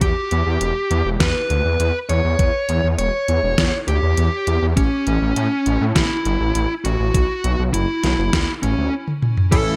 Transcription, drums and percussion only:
0.01 kick loud
0.01 closed hi-hat medium
0.31 closed hi-hat medium
0.61 closed hi-hat medium
0.91 closed hi-hat medium
1.20 kick loud
1.20 snare loud
1.20 closed hi-hat medium
1.50 closed hi-hat medium
1.80 closed hi-hat medium
2.09 closed hi-hat medium
2.39 kick loud
2.39 closed hi-hat medium
2.69 closed hi-hat medium
2.98 closed hi-hat medium
3.28 closed hi-hat medium
3.58 kick loud
3.58 snare loud
3.58 closed hi-hat medium
3.88 closed hi-hat medium
4.17 closed hi-hat medium
4.47 closed hi-hat medium
4.77 kick loud
4.77 closed hi-hat medium
5.07 closed hi-hat medium
5.36 closed hi-hat medium
5.66 closed hi-hat medium
5.96 kick loud
5.96 snare loud
5.96 closed hi-hat medium
6.25 closed hi-hat medium
6.55 closed hi-hat medium
6.85 closed hi-hat medium
7.14 kick loud
7.14 closed hi-hat medium
7.44 closed hi-hat medium
7.74 closed hi-hat medium
8.04 snare soft
8.04 closed hi-hat medium
8.33 kick loud
8.33 snare loud
8.33 closed hi-hat medium
8.63 closed hi-hat medium
9.08 high tom medium
9.22 mid tom medium
9.37 mid tom medium
9.52 kick loud
9.52 closed hi-hat loud
9.52 crash loud

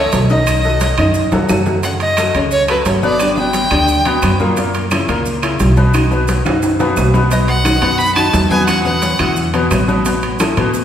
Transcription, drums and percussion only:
0.12 high conga loud
0.12 high timbale medium
0.12 low timbale medium
0.12 maracas medium
0.29 high conga medium
0.29 maracas soft
0.47 high conga soft
0.47 high timbale medium
0.47 claves medium
0.47 maracas medium
0.63 high conga soft
0.63 maracas soft
0.80 high conga medium
0.80 high timbale medium
0.80 low timbale medium
0.80 maracas medium
0.98 high conga soft
0.98 low conga medium
0.98 high timbale loud
0.98 claves medium
0.98 maracas soft
1.14 high conga soft
1.14 maracas medium
1.32 high conga medium
1.32 high timbale loud
1.32 maracas soft
1.49 high conga medium
1.49 low timbale medium
1.49 claves medium
1.49 maracas medium
1.66 low conga medium
1.66 low timbale medium
1.66 maracas soft
1.83 high conga soft
1.83 high timbale medium
1.83 maracas medium
2.00 high conga soft
2.00 high timbale medium
2.00 maracas soft
2.17 high conga medium
2.17 high timbale loud
2.17 low timbale medium
2.17 claves medium
2.17 maracas medium
2.35 high conga soft
2.35 high timbale medium
2.35 maracas soft
2.51 maracas medium
2.68 high conga soft
2.68 high timbale loud
2.68 claves medium
2.68 maracas soft
2.85 high conga medium
2.85 high timbale medium
2.85 low timbale medium
2.85 maracas medium
3.03 high conga medium
3.03 maracas soft
3.19 high conga soft
3.19 high timbale medium
3.19 claves medium
3.19 maracas medium
3.37 high conga soft
3.37 maracas soft
3.53 high conga medium
3.53 high timbale medium
3.53 low timbale medium
3.53 maracas medium
3.71 high conga soft
3.71 low conga medium
3.71 high timbale loud
3.71 claves medium
3.71 maracas soft
3.88 high conga soft
3.88 maracas medium
4.05 high timbale medium
4.05 maracas soft
4.22 high conga medium
4.22 high timbale medium
4.22 low timbale medium
4.22 claves medium
4.22 maracas medium
4.39 high conga medium
4.39 maracas soft
4.57 high conga soft
4.57 high timbale medium
4.57 maracas medium
4.74 high conga soft
4.74 high timbale medium
4.74 maracas soft
4.91 high conga medium
4.91 high timbale loud
4.91 low timbale medium
4.91 claves medium
4.91 maracas medium
5.08 high conga soft
5.08 high timbale medium
5.08 maracas soft
5.26 high conga soft
5.26 maracas medium
5.42 high conga soft
5.42 high timbale loud
5.42 claves medium
5.42 maracas soft
5.60 high conga medium
5.60 high timbale medium
5.60 low timbale medium
5.60 maracas medium
5.76 high conga medium
5.76 maracas soft
5.94 high conga soft
5.94 high timbale medium
5.94 claves medium
5.94 maracas medium
6.11 high conga soft
6.11 maracas soft
6.28 high conga medium
6.28 high timbale medium
6.28 low timbale medium
6.28 maracas medium
6.45 high conga soft
6.45 low conga medium
6.45 high timbale loud
6.45 claves medium
6.45 maracas soft
6.62 high conga soft
6.62 high timbale medium
6.62 maracas medium
6.79 high conga soft
6.79 high timbale medium
6.79 maracas soft
6.97 high conga medium
6.97 low timbale medium
6.97 claves medium
6.97 maracas medium
7.14 high conga medium
7.14 low timbale medium
7.14 maracas soft
7.31 high conga soft
7.31 high timbale medium
7.31 maracas medium
7.48 high conga soft
7.48 high timbale medium
7.48 maracas soft
7.65 high conga medium
7.65 high timbale medium
7.65 low timbale medium
7.65 claves medium
7.65 maracas medium
7.82 high timbale medium
7.82 maracas soft
8.00 high conga soft
8.00 maracas medium
8.16 high conga soft
8.16 high timbale loud
8.16 claves medium
8.16 maracas soft
8.33 high conga medium
8.33 high timbale medium
8.33 low timbale medium
8.33 maracas medium
8.51 high conga medium
8.51 maracas soft
8.68 high conga soft
8.68 high timbale medium
8.68 claves medium
8.68 maracas medium
8.85 high conga soft
8.85 maracas soft
9.02 high conga medium
9.02 high timbale medium
9.02 low timbale medium
9.02 maracas medium
9.19 high conga soft
9.19 low conga medium
9.19 high timbale loud
9.19 claves medium
9.19 maracas soft
9.36 high conga soft
9.36 low conga medium
9.36 maracas medium
9.54 high conga soft
9.54 high timbale medium
9.54 maracas soft
9.71 high conga medium
9.71 high timbale medium
9.71 low timbale medium
9.71 claves medium
9.71 maracas medium
9.88 high conga medium
9.88 maracas soft
10.05 high conga soft
10.05 high timbale medium
10.05 maracas medium
10.22 high conga soft
10.22 high timbale medium
10.22 maracas soft
10.39 high conga medium
10.39 high timbale medium
10.39 low timbale medium
10.39 claves medium
10.39 maracas medium
10.57 high conga soft
10.57 high timbale medium
10.57 maracas soft
10.74 high conga soft
10.74 maracas medium

